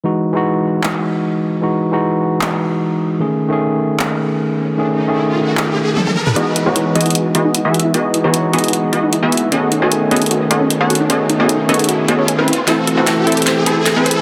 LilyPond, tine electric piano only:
\new Staff \with { instrumentName = "Tine electric piano" } { \time 4/4 \key e \major \tempo 4 = 152 <e gis dis' fis'>8. <e gis dis' fis'>2.~ <e gis dis' fis'>16 | <e gis dis' fis'>8. <e gis dis' fis'>16 r2. | <dis a cis' gis'>8. <dis a cis' gis'>2.~ <dis a cis' gis'>16 | <dis a cis' gis'>8. <dis a cis' gis'>16 r2. |
<e gis dis' fis'>8. <e gis dis' fis'>2.~ <e gis dis' fis'>16 | <e gis dis' fis'>8. <e gis dis' fis'>16 r2. | <dis a cis' gis'>8. <dis a cis' gis''>2.~ <dis a cis' gis''>16 | <dis a cis' gis'>8. <dis a cis' gis'>16 r2. |
<e a c' a'>8. <e a c' a'>2.~ <e a c' a'>16 | }